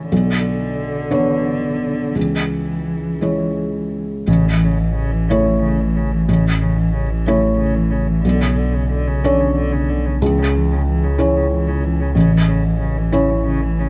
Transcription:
Already playing: A1 C#4 E4 C#5
0.12 B1 D3
1.11 B3 D4 C#5
2.15 C#2 E3
3.21 G#3 E4 C#5
4.27 A1 C#3
4.45 E3
4.63 C#3
4.79 E3
4.95 C#3
5.12 E3
5.29 C#3 A3 E4 C#5
5.46 E3
5.62 C#3
5.80 E3
5.96 C#3
6.12 E3
6.29 A1 C#3
6.45 E3
6.61 C#3
6.78 E3
6.94 C#3
7.10 E3
7.26 C#3 A3 E4 C#5
7.42 E3
7.57 C#3
7.75 E3
7.91 C#3
8.07 E3
8.24 B1 D3
8.41 C#3
8.57 D3
8.74 C#3
8.91 D3
9.07 C#3
9.24 D3 C#4 D4 C#5
9.40 C#3
9.56 D3
9.73 C#3
9.89 D3
10.06 C#3
10.21 C#2 E3
10.38 C#3
10.54 E3
10.72 C#3
10.87 E3
11.04 C#3
11.18 E3 C#4 E4 C#5
11.37 C#3
11.52 E3
11.68 C#3
11.84 E3
12.00 C#3
12.15 A1 C#3
12.33 E3
12.48 C#3
12.64 E3
12.81 C#3
12.97 E3
13.12 C#3 C#4 E4 C#5
13.31 E3
13.47 C#3
13.62 E3
13.79 C#3

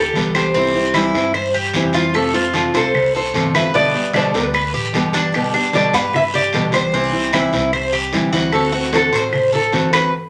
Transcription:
Already playing: D2 G4 A4
0.13 C2 D3 G3 B3 G4, high conga, short guiro
0.34 G3 B3 G4 C5, high conga, short guiro, claves
0.54 C3 E3 G3 C4 E4, high conga, long guiro
0.74 G3 C4 E4, high conga
0.94 C3 E3 G3 C4 E4, high conga, short guiro, claves
1.14 G2 G3 C4 E4, high conga, short guiro
1.34 C5, muted nylon-string guitar stroke, high conga, long guiro, claves
1.54 G4, high conga
1.73 F2 C3 E3 G3 C4 E4, high conga, short guiro
1.93 G3 C4 E4 F4, high conga, short guiro
2.14 C3 F3 A3 C4 F4 A4, long guiro, claves
2.34 A3 C4 F4, high conga
2.54 C3 F3 A3 C4 F4, high conga, short guiro
2.74 C2 A3 C4 F4 A4 C5, short guiro
2.94 muted nylon-string guitar stroke, high conga, low conga, long guiro, claves
3.15 A4 C5, high conga
3.34 G1 C3 F3 A3 C4 F4, high conga, short guiro
3.54 A3 C4 F4 B4 E5, high conga, short guiro, claves
3.74 B2 D3 G3 B3 G4 D5, long guiro
3.94 G3 B3 G4, high conga
4.13 B2 D3 G3 B3 D4 G4 C5, high conga, short guiro, claves
4.34 D2 G3 B3 G4 B4, short guiro
4.53 B4, muted nylon-string guitar stroke, high conga, long guiro, claves
4.74 A1 G4, high conga
4.93 G1 B2 D3 G3 B3 G4, high conga, short guiro
5.13 G3 B3 D4 G4, high conga, short guiro
5.33 B2 D3 G3 B3 G4, high conga, long guiro, claves
5.54 G3 B3 D4 G4, high conga
5.73 B2 D3 G3 B3 G4 D5, high conga, short guiro
5.93 G2 G3 B3 G4 B4 F5, short guiro
6.13 E5, muted nylon-string guitar stroke, high conga, low conga, long guiro, claves
6.34 G4 D5, high conga, low conga
6.53 C2 B2 D3 G3 B3 G4, high conga, short guiro
6.72 G3 B3 G4 C5, high conga, short guiro, claves
6.92 C3 E3 G3 C4 E4, long guiro
7.12 G3 C4 E4, high conga
7.33 C3 E3 G3 C4 E4, high conga, short guiro, claves
7.53 C2 G3 C4 E4, high conga, short guiro
7.73 C5, muted nylon-string guitar stroke, high conga, long guiro, claves
7.93 G4, high conga
8.12 D2 C3 E3 G3 C4 E4, high conga, short guiro
8.33 G3 C4 E4 F#4, high conga, short guiro
8.53 D3 A3 C4 F#4 A4, long guiro, claves
8.72 A3 C4 F#4, high conga
8.93 D3 A3 C4 F#4 A4, high conga, short guiro
9.12 A1 A3 C4 F#4 C5, short guiro
9.32 muted nylon-string guitar stroke, high conga, low conga, long guiro, claves
9.53 A4, high conga, low conga
9.72 G1 D3 A3 C4 F#4, high conga, short guiro
9.93 A3 C4 F#4 B4, high conga, short guiro, claves

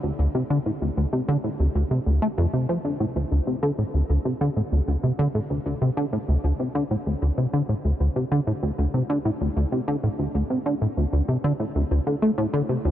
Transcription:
0.03 D2
0.19 D2
0.35 C3
0.50 D3
0.66 A2
0.82 D2
0.97 D2
1.13 C3
1.28 D3
1.44 A2
1.60 D2
1.75 D2
1.91 C3
2.06 D2
2.22 A3
2.38 F2
2.53 C3
2.69 F3
2.85 D3
3.00 A2
3.16 D2
3.32 D2
3.47 C3
3.63 D3
3.78 A2
3.94 D2
4.10 D2
4.25 C3
4.41 D3
4.57 A2
4.72 D2
4.88 D2
5.03 C3
5.19 D3
5.35 A2
5.50 D2
5.66 D2
5.81 C3
5.97 D3
6.13 A2
6.28 D2
6.44 D2
6.60 C3
6.75 D3
6.91 A2
7.06 D2
7.22 D2
7.38 C3
7.53 D3
7.69 A2
7.85 D2
8.00 D2
8.16 C3
8.32 D3
8.47 A2
8.63 D2
8.78 D2
8.94 C3
9.10 D3
9.25 A2
9.41 D2
9.56 D2
9.72 C3
9.88 D3
10.03 A2
10.19 D2
10.35 D2
10.50 C3
10.66 D3
10.81 A2
10.97 D2
11.13 D2
11.28 C3
11.44 D3
11.60 A2
11.75 D2
11.91 D2
12.07 D3
12.22 A3
12.38 A2
12.53 D3
12.69 C3
12.85 D2

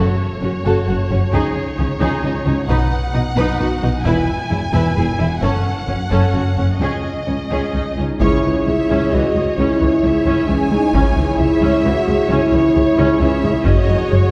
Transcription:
Already playing: F#4 A4
0.00 C#5
0.42 F#1 F#2 C#4 F#4
0.65 F#1 F#2 F#4 A4
0.88 F#1 F#2 F#4
1.10 F#1 F#2 C#4 F#4
1.33 C#2 C#3 D#4 G#4
1.78 C#2 C#3 C#4 D#4
2.00 C#2 C#3 D#4 G#4
2.23 C#2 C#3 D#4
2.46 C#2 C#3 C#4 D#4
2.68 B1 B2 D#4 B4 F#5
3.14 B1 B2 D#4
3.36 B1 B2 D#4 B4
3.60 B1 B2 D#4 F#4
3.82 B1 B2 D#4
4.04 E1 E2 E4 B4 G#5
4.50 E1 E2 E4
4.73 E1 E2 E4 B4
4.96 E1 E2 E4 G#4
5.18 E1 E2 E4
5.41 F#1 F#2 C#4 A4 F#5
5.88 F#1 F#2 C#4
6.10 F#1 F#2 C#4 A4
6.33 F#1 F#2 C#4 F#4
6.57 F#1 F#2 C#4
6.80 C#2 C#4 G#4 D#5
7.26 C#2 C#4
7.50 C#2 C#4 G#4
7.74 C#2 C#4 D#4
7.97 C#2 C#4 D#4
8.20 C#2 C#4 E4 G#4 C#5, taiko
8.43 C#2 E3
8.67 C#2 G#3 E5
8.90 C#2 C#4
9.12 C#2 E3 F#4 D#5
9.35 C#2 G#3
9.57 C#2 C#4 E4 C#5
9.81 C#2 E3
10.03 C#2 G#3 E5
10.26 C#2 C#4
10.47 C#2 E3 C#4 G#5
10.70 C#2 G#3 D#4
10.93 C#2 C#4 E4, taiko
11.16 C#2 E3
11.39 C#2 G#3 E5
11.62 C#2 C#4
11.85 C#2 E3 F#4
12.08 C#2 G#3
12.29 C#2 C#4 E4 C#5
12.52 C#2 E3
12.75 C#2 G#3
12.98 C#2 C#4
13.19 C#2 E3 C#4 E5
13.43 C#2 G#3 E4
13.65 F#1 F#2 C#4 F#4 G#4 C#5 D#5, taiko
13.88 F#1 F#2 F#3
14.09 F#1 F#2 G#3 C#5

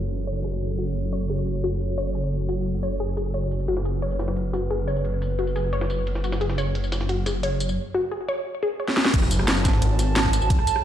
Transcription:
Already playing: F#1 F#4 A4 C#5, downlifter
0.02 tambourine
0.10 closed hi-hat, tambourine
0.27 C#5, closed hi-hat
0.44 G#4, closed hi-hat, tambourine
0.61 closed hi-hat
0.78 F#4, closed hi-hat, tambourine
0.87 tambourine
0.95 closed hi-hat
1.13 C#5, closed hi-hat, tambourine
1.30 G#4, closed hi-hat
1.38 tambourine
1.47 closed hi-hat, tambourine
1.64 F#4, closed hi-hat
1.81 closed hi-hat, tambourine
1.98 C#5, closed hi-hat
2.15 G#4, closed hi-hat, tambourine
2.23 tambourine
2.32 closed hi-hat
2.49 F#4, closed hi-hat, tambourine
2.66 closed hi-hat
2.75 tambourine
2.83 C#5, closed hi-hat, tambourine
3.00 G#4, closed hi-hat
3.17 G#4, closed hi-hat, tambourine
3.34 C#5, closed hi-hat
3.51 closed hi-hat, tambourine
3.60 tambourine
3.68 F#1 F#4 B4, closed hi-hat, ride
3.77 snare
3.85 G#4, closed hi-hat, ride, tambourine
4.02 C#5, closed hi-hat, ride
4.11 tambourine
4.19 snare, closed hi-hat, ride, tambourine
4.28 snare
4.36 closed hi-hat, ride
4.53 F#4, snare, closed hi-hat, ride, tambourine
4.70 G#4, closed hi-hat, ride
4.88 C#5, closed hi-hat, ride, tambourine
4.96 tambourine
5.05 closed hi-hat, ride
5.22 closed hi-hat, ride, tambourine
5.39 F#4, closed hi-hat, ride
5.47 tambourine
5.56 G#4, closed hi-hat, ride, tambourine
5.73 C#5, closed hi-hat, ride
5.81 snare
5.90 closed hi-hat, ride, tambourine
6.07 closed hi-hat, ride
6.15 snare
6.24 F#4, closed hi-hat, ride, tambourine
6.32 snare, tambourine
6.41 G#4, closed hi-hat, ride
6.49 snare
6.58 C#5, closed hi-hat, ride, tambourine
6.75 closed hi-hat, ride
6.84 tambourine
6.92 snare, closed hi-hat, ride, tambourine
7.01 snare
7.09 F#4, closed hi-hat, ride
7.26 G#4, snare, closed hi-hat, ride, tambourine
7.43 C#5, closed hi-hat, ride
7.60 closed hi-hat, tambourine
7.69 tambourine
7.95 F#4
8.11 G#4
8.29 C#5
8.63 G#4
8.80 C#5
8.88 snare
8.97 snare
9.05 snare
9.14 F#1 F#4 C#5 G#5 A5, kick, closed hi-hat, crash, ride
9.22 cross-stick, snare
9.31 closed hi-hat, ride, tambourine
9.39 cross-stick
9.48 snare, closed hi-hat, ride
9.56 tambourine
9.65 G#1, kick, snare, closed hi-hat, ride, tambourine
9.73 snare
9.82 closed hi-hat, ride
9.99 snare, closed hi-hat, ride, tambourine
10.16 snare, closed hi-hat, ride
10.25 kick, cross-stick
10.33 closed hi-hat, ride, tambourine
10.42 tambourine
10.50 kick, closed hi-hat, ride
10.59 cross-stick
10.67 closed hi-hat, ride, tambourine
10.76 cross-stick

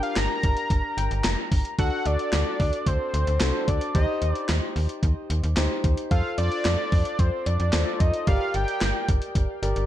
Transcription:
Already playing: D4 G4 A#4
0.03 F5, closed hi-hat
0.16 G1 A#5, snare, clap, closed hi-hat
0.43 G1, kick, closed hi-hat
0.57 closed hi-hat
0.70 G1, kick, closed hi-hat
0.97 G1 G5, closed hi-hat
1.11 G1, closed hi-hat
1.24 F1 A#5, snare, clap, closed hi-hat
1.52 G1, kick, open hi-hat
1.65 closed hi-hat
1.79 D2 D4 F#4 A4 F#5, kick, closed hi-hat
2.06 D2 D5, closed hi-hat
2.19 closed hi-hat
2.33 D2, snare, clap, closed hi-hat
2.60 D2, kick, open hi-hat
2.73 closed hi-hat
2.87 D2 C5, kick, closed hi-hat
3.14 D2, closed hi-hat
3.27 D2, closed hi-hat
3.40 C2 D4 F#4 A4, snare, clap, closed hi-hat
3.68 D2 D5, kick, closed hi-hat
3.81 closed hi-hat
3.95 D#2 D#4 G4 C5 D#5, kick, closed hi-hat
4.22 D#2, closed hi-hat
4.32 D5, closed hi-hat
4.49 D#2, snare, clap, closed hi-hat
4.76 D#2, open hi-hat
4.89 closed hi-hat
5.03 D#2, kick, closed hi-hat
5.30 D#2, closed hi-hat
5.43 D#2, closed hi-hat
5.57 D2 D#4 G4 C5, snare, clap, closed hi-hat
5.84 D#2, kick, closed hi-hat
5.97 closed hi-hat
6.11 F2 F4 A4 C5 F5, kick, closed hi-hat
6.38 F2 D5, closed hi-hat
6.52 closed hi-hat
6.65 F2, snare, clap, closed hi-hat
6.92 F2, kick, open hi-hat
7.05 closed hi-hat
7.19 F2 C5, kick, closed hi-hat
7.46 F2 D5, closed hi-hat
7.60 F2, closed hi-hat
7.73 D#2 F4 A4 C5, snare, clap, closed hi-hat
8.00 F2 D#5, kick, closed hi-hat
8.14 closed hi-hat
8.27 G1 G4 A#4 D5 F5, kick, closed hi-hat
8.54 G1 G5, closed hi-hat
8.68 closed hi-hat
8.81 G1, snare, clap, closed hi-hat
9.09 G1, kick, closed hi-hat
9.22 closed hi-hat
9.35 G1, kick, closed hi-hat
9.63 G1 G4 A#4 D5, closed hi-hat
9.76 G1, closed hi-hat

